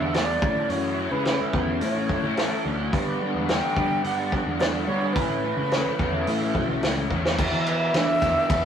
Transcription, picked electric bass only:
0, 0, Header, 1, 2, 480
1, 0, Start_track
1, 0, Tempo, 557103
1, 610, Time_signature, 4, 2, 24, 8
1, 7453, End_track
2, 0, Start_track
2, 0, Title_t, "Picked electric bass"
2, 0, Program_c, 0, 34
2, 2, Note_on_c, 0, 40, 82
2, 318, Note_off_c, 0, 40, 0
2, 360, Note_on_c, 0, 45, 91
2, 573, Note_off_c, 0, 45, 0
2, 597, Note_on_c, 0, 42, 90
2, 916, Note_off_c, 0, 42, 0
2, 957, Note_on_c, 0, 49, 69
2, 1172, Note_off_c, 0, 49, 0
2, 1320, Note_on_c, 0, 40, 91
2, 1533, Note_off_c, 0, 40, 0
2, 1561, Note_on_c, 0, 45, 77
2, 1774, Note_off_c, 0, 45, 0
2, 1926, Note_on_c, 0, 45, 77
2, 2137, Note_off_c, 0, 45, 0
2, 2286, Note_on_c, 0, 38, 74
2, 2497, Note_off_c, 0, 38, 0
2, 2525, Note_on_c, 0, 43, 94
2, 2736, Note_off_c, 0, 43, 0
2, 2885, Note_on_c, 0, 40, 77
2, 3096, Note_off_c, 0, 40, 0
2, 3244, Note_on_c, 0, 43, 84
2, 3456, Note_off_c, 0, 43, 0
2, 3481, Note_on_c, 0, 43, 78
2, 3798, Note_off_c, 0, 43, 0
2, 3841, Note_on_c, 0, 40, 85
2, 4159, Note_off_c, 0, 40, 0
2, 4199, Note_on_c, 0, 55, 88
2, 4413, Note_off_c, 0, 55, 0
2, 4441, Note_on_c, 0, 45, 93
2, 4759, Note_off_c, 0, 45, 0
2, 4797, Note_on_c, 0, 49, 78
2, 5012, Note_off_c, 0, 49, 0
2, 5163, Note_on_c, 0, 40, 88
2, 5375, Note_off_c, 0, 40, 0
2, 5402, Note_on_c, 0, 45, 83
2, 5615, Note_off_c, 0, 45, 0
2, 5641, Note_on_c, 0, 35, 75
2, 5861, Note_off_c, 0, 35, 0
2, 5876, Note_on_c, 0, 37, 67
2, 6098, Note_off_c, 0, 37, 0
2, 6119, Note_on_c, 0, 40, 69
2, 6340, Note_off_c, 0, 40, 0
2, 6365, Note_on_c, 0, 40, 82
2, 6472, Note_off_c, 0, 40, 0
2, 6478, Note_on_c, 0, 52, 79
2, 6796, Note_off_c, 0, 52, 0
2, 6841, Note_on_c, 0, 52, 80
2, 7053, Note_off_c, 0, 52, 0
2, 7083, Note_on_c, 0, 40, 95
2, 7190, Note_off_c, 0, 40, 0
2, 7321, Note_on_c, 0, 40, 96
2, 7453, Note_off_c, 0, 40, 0
2, 7453, End_track
0, 0, End_of_file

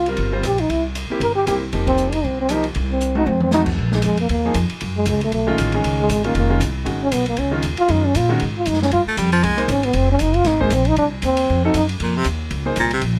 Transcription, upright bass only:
0, 0, Header, 1, 3, 480
1, 0, Start_track
1, 0, Tempo, 256959
1, 1289, Time_signature, 4, 2, 24, 8
1, 24641, End_track
2, 0, Start_track
2, 0, Title_t, "Upright bass"
2, 0, Program_c, 0, 32
2, 0, Note_on_c, 0, 36, 79
2, 287, Note_off_c, 0, 36, 0
2, 337, Note_on_c, 0, 31, 82
2, 780, Note_off_c, 0, 31, 0
2, 807, Note_on_c, 0, 34, 78
2, 1255, Note_off_c, 0, 34, 0
2, 1295, Note_on_c, 0, 36, 79
2, 2000, Note_off_c, 0, 36, 0
2, 2244, Note_on_c, 0, 31, 84
2, 2696, Note_off_c, 0, 31, 0
2, 2744, Note_on_c, 0, 36, 79
2, 3187, Note_off_c, 0, 36, 0
2, 3232, Note_on_c, 0, 29, 78
2, 4139, Note_off_c, 0, 29, 0
2, 4195, Note_on_c, 0, 36, 87
2, 5101, Note_off_c, 0, 36, 0
2, 5149, Note_on_c, 0, 36, 92
2, 6059, Note_off_c, 0, 36, 0
2, 6102, Note_on_c, 0, 41, 87
2, 7015, Note_off_c, 0, 41, 0
2, 7064, Note_on_c, 0, 34, 77
2, 7530, Note_off_c, 0, 34, 0
2, 7551, Note_on_c, 0, 41, 86
2, 8013, Note_off_c, 0, 41, 0
2, 8024, Note_on_c, 0, 39, 85
2, 8490, Note_off_c, 0, 39, 0
2, 8497, Note_on_c, 0, 41, 97
2, 8759, Note_off_c, 0, 41, 0
2, 8999, Note_on_c, 0, 42, 89
2, 9448, Note_off_c, 0, 42, 0
2, 9459, Note_on_c, 0, 37, 89
2, 9927, Note_off_c, 0, 37, 0
2, 9934, Note_on_c, 0, 35, 77
2, 10404, Note_off_c, 0, 35, 0
2, 10428, Note_on_c, 0, 33, 94
2, 10891, Note_off_c, 0, 33, 0
2, 10918, Note_on_c, 0, 37, 82
2, 11363, Note_off_c, 0, 37, 0
2, 11374, Note_on_c, 0, 32, 85
2, 11843, Note_off_c, 0, 32, 0
2, 11853, Note_on_c, 0, 29, 87
2, 12317, Note_off_c, 0, 29, 0
2, 12328, Note_on_c, 0, 36, 94
2, 12793, Note_off_c, 0, 36, 0
2, 12804, Note_on_c, 0, 32, 79
2, 13277, Note_off_c, 0, 32, 0
2, 13305, Note_on_c, 0, 35, 85
2, 13767, Note_off_c, 0, 35, 0
2, 13787, Note_on_c, 0, 37, 85
2, 14247, Note_off_c, 0, 37, 0
2, 14265, Note_on_c, 0, 39, 89
2, 14519, Note_off_c, 0, 39, 0
2, 14741, Note_on_c, 0, 42, 82
2, 15203, Note_off_c, 0, 42, 0
2, 15229, Note_on_c, 0, 46, 93
2, 15687, Note_off_c, 0, 46, 0
2, 15728, Note_on_c, 0, 44, 84
2, 16176, Note_off_c, 0, 44, 0
2, 16195, Note_on_c, 0, 42, 82
2, 16649, Note_off_c, 0, 42, 0
2, 16662, Note_on_c, 0, 43, 84
2, 16915, Note_off_c, 0, 43, 0
2, 17135, Note_on_c, 0, 41, 92
2, 17598, Note_off_c, 0, 41, 0
2, 17623, Note_on_c, 0, 36, 87
2, 18072, Note_off_c, 0, 36, 0
2, 18083, Note_on_c, 0, 32, 95
2, 18551, Note_off_c, 0, 32, 0
2, 18563, Note_on_c, 0, 29, 90
2, 19030, Note_off_c, 0, 29, 0
2, 19074, Note_on_c, 0, 30, 84
2, 19518, Note_off_c, 0, 30, 0
2, 19529, Note_on_c, 0, 32, 90
2, 19993, Note_off_c, 0, 32, 0
2, 20018, Note_on_c, 0, 34, 93
2, 20477, Note_off_c, 0, 34, 0
2, 20493, Note_on_c, 0, 36, 84
2, 20955, Note_off_c, 0, 36, 0
2, 20972, Note_on_c, 0, 39, 92
2, 21434, Note_off_c, 0, 39, 0
2, 21477, Note_on_c, 0, 41, 90
2, 21919, Note_off_c, 0, 41, 0
2, 21930, Note_on_c, 0, 42, 90
2, 22393, Note_off_c, 0, 42, 0
2, 22420, Note_on_c, 0, 41, 80
2, 22878, Note_off_c, 0, 41, 0
2, 22890, Note_on_c, 0, 39, 87
2, 23354, Note_off_c, 0, 39, 0
2, 23363, Note_on_c, 0, 37, 86
2, 23830, Note_off_c, 0, 37, 0
2, 23852, Note_on_c, 0, 36, 91
2, 24299, Note_off_c, 0, 36, 0
2, 24311, Note_on_c, 0, 34, 83
2, 24641, Note_off_c, 0, 34, 0
2, 24641, End_track
3, 0, Start_track
3, 0, Title_t, "Muted upright bass strokes"
3, 2058, Note_on_c, 9, 29, 34
3, 2245, Note_off_c, 9, 29, 0
3, 8801, Note_on_c, 9, 29, 36
3, 8988, Note_off_c, 9, 29, 0
3, 14556, Note_on_c, 9, 29, 35
3, 14743, Note_off_c, 9, 29, 0
3, 16926, Note_on_c, 9, 29, 41
3, 17113, Note_off_c, 9, 29, 0
3, 24641, End_track
0, 0, End_of_file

